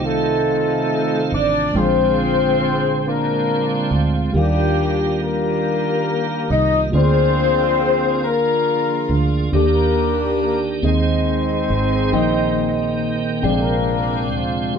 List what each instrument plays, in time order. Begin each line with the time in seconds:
Already playing: fingered electric bass C2, tine electric piano C3 A3 D#4 F4 C5, tonewheel organ D#3 A3 C4 F4
0.04 horn section A3 D#4 F4 A4
1.32 fingered electric bass A1, horn section D4 D5
1.72 fingered electric bass A#1, tine electric piano A#2 G#3 D4 G5, tonewheel organ D3 G#3 C4 F4
1.77 horn section C4 F4 G#4 C5, tine electric piano C5
1.83 tonewheel organ G5
3.06 horn section A#3 D4 F4 A#4
3.91 fingered electric bass D2
4.31 fingered electric bass D#2, tine electric piano D#3 G3 F4 G4, tonewheel organ D#3 G3 A#3
4.36 horn section G3 A#3 D4 G4, tonewheel organ F4, tine electric piano F5
5.22 horn section A#3 D4 G4 A#4
6.50 fingered electric bass C2, horn section D#4 D#5
6.90 fingered electric bass D2, tine electric piano D3 A#3 F4 G#4, tonewheel organ F3 A#3 C#4 G#4
6.95 horn section C4 F4 G#4 C5, tine electric piano D5
7.00 tonewheel organ D4
8.25 horn section A#3 F4 A#4
9.10 fingered electric bass D2
9.52 fingered electric bass D#2, tine electric piano D#3 A#3 D4 G4 D5, tonewheel organ D#3 A#3 D4 G4, horn section A#3 D4 G4 A#4
10.42 horn section A#3 A#4
10.82 fingered electric bass D#2, tonewheel organ D#3 G#3 C4 G#4, tine electric piano D#3 C4 D#4 G#4 D#5, horn section C4 D#4 G#4 C5
11.70 fingered electric bass G#1
12.12 fingered electric bass A#1, tine electric piano A#2 A#3 D#4 D#5 G5, tonewheel organ D#3 A#3 G5
13.42 fingered electric bass A#1, tine electric piano A#2 C4 G#4 D5 G5, tonewheel organ C3 G#3 C4 G5
13.46 horn section A#3 D4 F4 A#4
14.31 fingered electric bass D2, horn section F3 F4
14.72 tine electric piano D#3 A#3 G4